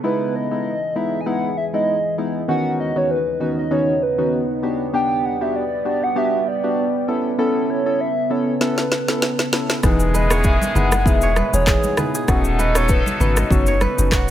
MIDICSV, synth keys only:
0, 0, Header, 1, 2, 480
1, 0, Start_track
1, 0, Key_signature, 4, "major"
1, 0, Tempo, 612245
1, 29, Time_signature, 4, 2, 24, 8
1, 11215, End_track
2, 0, Start_track
2, 0, Title_t, "Synth keys"
2, 0, Program_c, 0, 88
2, 28, Note_on_c, 0, 56, 97
2, 29, Note_on_c, 0, 59, 89
2, 31, Note_on_c, 0, 63, 90
2, 32, Note_on_c, 0, 64, 108
2, 369, Note_off_c, 0, 56, 0
2, 369, Note_off_c, 0, 59, 0
2, 370, Note_off_c, 0, 63, 0
2, 371, Note_off_c, 0, 64, 0
2, 399, Note_on_c, 0, 56, 79
2, 401, Note_on_c, 0, 59, 72
2, 402, Note_on_c, 0, 63, 71
2, 404, Note_on_c, 0, 64, 88
2, 573, Note_off_c, 0, 56, 0
2, 574, Note_off_c, 0, 59, 0
2, 575, Note_off_c, 0, 63, 0
2, 576, Note_off_c, 0, 64, 0
2, 748, Note_on_c, 0, 56, 80
2, 749, Note_on_c, 0, 59, 69
2, 752, Note_on_c, 0, 63, 74
2, 753, Note_on_c, 0, 64, 85
2, 934, Note_off_c, 0, 56, 0
2, 934, Note_off_c, 0, 59, 0
2, 936, Note_off_c, 0, 63, 0
2, 936, Note_off_c, 0, 64, 0
2, 986, Note_on_c, 0, 56, 89
2, 988, Note_on_c, 0, 59, 83
2, 989, Note_on_c, 0, 63, 84
2, 992, Note_on_c, 0, 64, 101
2, 1173, Note_off_c, 0, 56, 0
2, 1174, Note_off_c, 0, 59, 0
2, 1175, Note_off_c, 0, 63, 0
2, 1176, Note_off_c, 0, 64, 0
2, 1358, Note_on_c, 0, 56, 82
2, 1360, Note_on_c, 0, 59, 73
2, 1361, Note_on_c, 0, 63, 73
2, 1363, Note_on_c, 0, 64, 88
2, 1533, Note_off_c, 0, 56, 0
2, 1534, Note_off_c, 0, 59, 0
2, 1534, Note_off_c, 0, 63, 0
2, 1535, Note_off_c, 0, 64, 0
2, 1707, Note_on_c, 0, 56, 80
2, 1709, Note_on_c, 0, 59, 75
2, 1711, Note_on_c, 0, 63, 75
2, 1712, Note_on_c, 0, 64, 86
2, 1894, Note_off_c, 0, 56, 0
2, 1894, Note_off_c, 0, 59, 0
2, 1895, Note_off_c, 0, 63, 0
2, 1896, Note_off_c, 0, 64, 0
2, 1946, Note_on_c, 0, 51, 98
2, 1946, Note_on_c, 0, 59, 91
2, 1948, Note_on_c, 0, 61, 88
2, 1949, Note_on_c, 0, 63, 89
2, 1951, Note_on_c, 0, 66, 109
2, 2288, Note_off_c, 0, 51, 0
2, 2288, Note_off_c, 0, 59, 0
2, 2289, Note_off_c, 0, 61, 0
2, 2290, Note_off_c, 0, 63, 0
2, 2290, Note_off_c, 0, 66, 0
2, 2317, Note_on_c, 0, 51, 78
2, 2318, Note_on_c, 0, 59, 71
2, 2319, Note_on_c, 0, 61, 72
2, 2321, Note_on_c, 0, 63, 72
2, 2322, Note_on_c, 0, 66, 92
2, 2492, Note_off_c, 0, 51, 0
2, 2493, Note_off_c, 0, 59, 0
2, 2493, Note_off_c, 0, 61, 0
2, 2494, Note_off_c, 0, 63, 0
2, 2495, Note_off_c, 0, 66, 0
2, 2666, Note_on_c, 0, 51, 75
2, 2667, Note_on_c, 0, 59, 73
2, 2668, Note_on_c, 0, 61, 70
2, 2669, Note_on_c, 0, 63, 73
2, 2671, Note_on_c, 0, 66, 91
2, 2853, Note_off_c, 0, 51, 0
2, 2853, Note_off_c, 0, 59, 0
2, 2854, Note_off_c, 0, 61, 0
2, 2855, Note_off_c, 0, 63, 0
2, 2855, Note_off_c, 0, 66, 0
2, 2906, Note_on_c, 0, 51, 93
2, 2907, Note_on_c, 0, 59, 86
2, 2908, Note_on_c, 0, 61, 85
2, 2909, Note_on_c, 0, 63, 85
2, 2911, Note_on_c, 0, 66, 100
2, 3093, Note_off_c, 0, 51, 0
2, 3094, Note_off_c, 0, 59, 0
2, 3094, Note_off_c, 0, 61, 0
2, 3095, Note_off_c, 0, 63, 0
2, 3095, Note_off_c, 0, 66, 0
2, 3277, Note_on_c, 0, 51, 81
2, 3278, Note_on_c, 0, 59, 75
2, 3280, Note_on_c, 0, 61, 75
2, 3281, Note_on_c, 0, 63, 74
2, 3281, Note_on_c, 0, 66, 90
2, 3452, Note_off_c, 0, 51, 0
2, 3453, Note_off_c, 0, 59, 0
2, 3454, Note_off_c, 0, 61, 0
2, 3454, Note_off_c, 0, 63, 0
2, 3454, Note_off_c, 0, 66, 0
2, 3628, Note_on_c, 0, 59, 82
2, 3629, Note_on_c, 0, 62, 74
2, 3631, Note_on_c, 0, 66, 72
2, 3632, Note_on_c, 0, 67, 88
2, 3814, Note_off_c, 0, 59, 0
2, 3814, Note_off_c, 0, 62, 0
2, 3815, Note_off_c, 0, 66, 0
2, 3816, Note_off_c, 0, 67, 0
2, 3868, Note_on_c, 0, 59, 99
2, 3869, Note_on_c, 0, 62, 88
2, 3873, Note_on_c, 0, 67, 113
2, 4209, Note_off_c, 0, 59, 0
2, 4209, Note_off_c, 0, 62, 0
2, 4211, Note_off_c, 0, 67, 0
2, 4239, Note_on_c, 0, 59, 82
2, 4241, Note_on_c, 0, 62, 73
2, 4243, Note_on_c, 0, 66, 72
2, 4244, Note_on_c, 0, 67, 85
2, 4413, Note_off_c, 0, 59, 0
2, 4414, Note_off_c, 0, 62, 0
2, 4415, Note_off_c, 0, 66, 0
2, 4416, Note_off_c, 0, 67, 0
2, 4586, Note_on_c, 0, 59, 80
2, 4588, Note_on_c, 0, 62, 70
2, 4589, Note_on_c, 0, 66, 68
2, 4591, Note_on_c, 0, 67, 87
2, 4773, Note_off_c, 0, 59, 0
2, 4774, Note_off_c, 0, 62, 0
2, 4775, Note_off_c, 0, 66, 0
2, 4775, Note_off_c, 0, 67, 0
2, 4826, Note_on_c, 0, 59, 98
2, 4828, Note_on_c, 0, 62, 88
2, 4830, Note_on_c, 0, 66, 87
2, 4831, Note_on_c, 0, 67, 107
2, 5013, Note_off_c, 0, 59, 0
2, 5014, Note_off_c, 0, 62, 0
2, 5015, Note_off_c, 0, 66, 0
2, 5016, Note_off_c, 0, 67, 0
2, 5201, Note_on_c, 0, 59, 80
2, 5203, Note_on_c, 0, 62, 71
2, 5205, Note_on_c, 0, 66, 73
2, 5206, Note_on_c, 0, 67, 84
2, 5374, Note_off_c, 0, 59, 0
2, 5375, Note_off_c, 0, 62, 0
2, 5376, Note_off_c, 0, 66, 0
2, 5377, Note_off_c, 0, 67, 0
2, 5550, Note_on_c, 0, 59, 78
2, 5551, Note_on_c, 0, 61, 74
2, 5553, Note_on_c, 0, 64, 75
2, 5554, Note_on_c, 0, 69, 87
2, 5735, Note_off_c, 0, 59, 0
2, 5735, Note_off_c, 0, 61, 0
2, 5736, Note_off_c, 0, 64, 0
2, 5737, Note_off_c, 0, 69, 0
2, 5788, Note_on_c, 0, 59, 99
2, 5789, Note_on_c, 0, 61, 94
2, 5791, Note_on_c, 0, 64, 90
2, 5793, Note_on_c, 0, 69, 107
2, 6129, Note_off_c, 0, 59, 0
2, 6130, Note_off_c, 0, 61, 0
2, 6130, Note_off_c, 0, 64, 0
2, 6131, Note_off_c, 0, 69, 0
2, 6160, Note_on_c, 0, 59, 82
2, 6161, Note_on_c, 0, 61, 74
2, 6163, Note_on_c, 0, 64, 70
2, 6165, Note_on_c, 0, 69, 88
2, 6334, Note_off_c, 0, 59, 0
2, 6334, Note_off_c, 0, 61, 0
2, 6335, Note_off_c, 0, 64, 0
2, 6336, Note_off_c, 0, 69, 0
2, 6507, Note_on_c, 0, 59, 79
2, 6510, Note_on_c, 0, 61, 75
2, 6511, Note_on_c, 0, 64, 71
2, 6512, Note_on_c, 0, 69, 90
2, 6693, Note_off_c, 0, 59, 0
2, 6695, Note_off_c, 0, 61, 0
2, 6695, Note_off_c, 0, 64, 0
2, 6696, Note_off_c, 0, 69, 0
2, 6747, Note_on_c, 0, 59, 94
2, 6748, Note_on_c, 0, 61, 87
2, 6750, Note_on_c, 0, 64, 80
2, 6752, Note_on_c, 0, 69, 100
2, 6933, Note_off_c, 0, 59, 0
2, 6934, Note_off_c, 0, 61, 0
2, 6935, Note_off_c, 0, 64, 0
2, 6936, Note_off_c, 0, 69, 0
2, 7118, Note_on_c, 0, 59, 79
2, 7120, Note_on_c, 0, 61, 72
2, 7121, Note_on_c, 0, 64, 76
2, 7124, Note_on_c, 0, 69, 89
2, 7293, Note_off_c, 0, 59, 0
2, 7294, Note_off_c, 0, 61, 0
2, 7294, Note_off_c, 0, 64, 0
2, 7296, Note_off_c, 0, 69, 0
2, 7468, Note_on_c, 0, 59, 76
2, 7469, Note_on_c, 0, 61, 72
2, 7471, Note_on_c, 0, 64, 70
2, 7473, Note_on_c, 0, 69, 87
2, 7654, Note_off_c, 0, 59, 0
2, 7655, Note_off_c, 0, 61, 0
2, 7656, Note_off_c, 0, 64, 0
2, 7656, Note_off_c, 0, 69, 0
2, 7708, Note_on_c, 0, 59, 94
2, 7709, Note_on_c, 0, 63, 88
2, 7711, Note_on_c, 0, 52, 90
2, 7712, Note_on_c, 0, 68, 110
2, 8049, Note_off_c, 0, 59, 0
2, 8049, Note_off_c, 0, 63, 0
2, 8050, Note_off_c, 0, 52, 0
2, 8051, Note_off_c, 0, 68, 0
2, 8079, Note_on_c, 0, 59, 75
2, 8081, Note_on_c, 0, 63, 71
2, 8083, Note_on_c, 0, 64, 73
2, 8084, Note_on_c, 0, 68, 90
2, 8253, Note_off_c, 0, 59, 0
2, 8254, Note_off_c, 0, 63, 0
2, 8255, Note_off_c, 0, 64, 0
2, 8256, Note_off_c, 0, 68, 0
2, 8428, Note_on_c, 0, 59, 78
2, 8431, Note_on_c, 0, 63, 72
2, 8432, Note_on_c, 0, 64, 72
2, 8433, Note_on_c, 0, 68, 83
2, 8614, Note_off_c, 0, 59, 0
2, 8615, Note_off_c, 0, 63, 0
2, 8616, Note_off_c, 0, 64, 0
2, 8617, Note_off_c, 0, 68, 0
2, 8666, Note_on_c, 0, 59, 92
2, 8669, Note_on_c, 0, 63, 82
2, 8671, Note_on_c, 0, 64, 82
2, 8673, Note_on_c, 0, 68, 100
2, 8853, Note_off_c, 0, 59, 0
2, 8854, Note_off_c, 0, 63, 0
2, 8855, Note_off_c, 0, 64, 0
2, 8856, Note_off_c, 0, 68, 0
2, 9039, Note_on_c, 0, 59, 79
2, 9040, Note_on_c, 0, 63, 70
2, 9042, Note_on_c, 0, 52, 72
2, 9044, Note_on_c, 0, 68, 89
2, 9362, Note_off_c, 0, 59, 0
2, 9363, Note_off_c, 0, 63, 0
2, 9364, Note_off_c, 0, 52, 0
2, 9364, Note_off_c, 0, 68, 0
2, 9388, Note_on_c, 0, 59, 83
2, 9389, Note_on_c, 0, 63, 73
2, 9392, Note_on_c, 0, 64, 73
2, 9392, Note_on_c, 0, 68, 88
2, 9611, Note_off_c, 0, 59, 0
2, 9612, Note_off_c, 0, 63, 0
2, 9613, Note_off_c, 0, 64, 0
2, 9613, Note_off_c, 0, 68, 0
2, 9629, Note_on_c, 0, 59, 98
2, 9629, Note_on_c, 0, 61, 91
2, 9632, Note_on_c, 0, 63, 90
2, 9632, Note_on_c, 0, 66, 102
2, 9969, Note_off_c, 0, 59, 0
2, 9970, Note_off_c, 0, 61, 0
2, 9971, Note_off_c, 0, 63, 0
2, 9971, Note_off_c, 0, 66, 0
2, 10002, Note_on_c, 0, 59, 81
2, 10003, Note_on_c, 0, 61, 74
2, 10005, Note_on_c, 0, 63, 70
2, 10007, Note_on_c, 0, 66, 87
2, 10175, Note_off_c, 0, 59, 0
2, 10175, Note_off_c, 0, 61, 0
2, 10176, Note_off_c, 0, 63, 0
2, 10177, Note_off_c, 0, 66, 0
2, 10350, Note_on_c, 0, 59, 77
2, 10352, Note_on_c, 0, 61, 70
2, 10353, Note_on_c, 0, 63, 71
2, 10354, Note_on_c, 0, 66, 87
2, 10535, Note_off_c, 0, 59, 0
2, 10536, Note_off_c, 0, 61, 0
2, 10536, Note_off_c, 0, 63, 0
2, 10537, Note_off_c, 0, 66, 0
2, 10589, Note_on_c, 0, 59, 91
2, 10591, Note_on_c, 0, 61, 84
2, 10592, Note_on_c, 0, 63, 87
2, 10594, Note_on_c, 0, 66, 100
2, 10774, Note_off_c, 0, 59, 0
2, 10775, Note_off_c, 0, 61, 0
2, 10776, Note_off_c, 0, 63, 0
2, 10777, Note_off_c, 0, 66, 0
2, 10961, Note_on_c, 0, 59, 79
2, 10963, Note_on_c, 0, 61, 71
2, 10964, Note_on_c, 0, 63, 73
2, 10966, Note_on_c, 0, 66, 84
2, 11134, Note_off_c, 0, 59, 0
2, 11135, Note_off_c, 0, 61, 0
2, 11136, Note_off_c, 0, 63, 0
2, 11137, Note_off_c, 0, 66, 0
2, 11215, End_track
0, 0, End_of_file